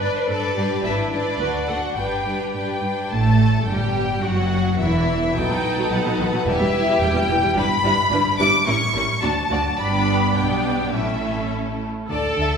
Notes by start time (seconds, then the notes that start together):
Already playing: B4
0.01 G2 D4 B4 D5
0.15 C5
0.28 G2 D4 A4 B4 D5
0.56 G2 D4 G4 B4
0.84 G#1 G#2 D4 E4 B4 E5
1.12 G#2 D4 B4 D5
1.39 D2 D4 F#4 B4
1.67 D2 D4 F#4 A4 F#5
1.96 G1 G2 D4 G4 B4 G5
2.25 G2 D4 B4
2.54 G2 D4 B4 G5
2.82 G2 D4 B4
3.10 A1 A2 A3 A4 A5
3.66 G1 G2 G3 G4 G5
4.22 F#1 F#2 F#3 F#4 F#5
4.78 E1 E2 E3 E4 E5
5.35 B1 B2 F#3 D#4 A4 B4 G5
5.49 B2 F#3
5.77 B2 F#3
5.91 B1 B2 F#3 F#5
6.05 B2 F#3
6.19 B1 B2 D#3
6.32 B2 F#3
6.46 E1 E2 G3 E4 G4 E5
6.60 E2 G3
6.87 E2 G3
7.01 E1 E2 G3 G5
7.15 E2 G3
7.28 E1 E2 E3
7.42 E2 G3
7.56 G1 G2 G3 D4 E4 B4 B5
7.84 G1 G2 G3 D4 E4 B4
8.11 G1 G2 G3 D4 E4 B4
8.38 G1 G2 G3 D4 E4 B4 D6
8.66 A1 A2 G3 C#4 E4 A#4 C#6
8.93 A1 A2 G3 C#4 E4 A#4
9.22 D2 F#3 D4 F#4 D5 A5
9.50 D2 F#3 D4 F#4 D5
9.77 G1 G2 B3 D4 G4 D5 B5
10.35 B1 B2 B3 D4 G4 D5 G5
10.93 A1 A2 A3 C#4 E4 A4 E5
12.10 D2 D3 A4 D5 A5
12.37 D2 D3 E5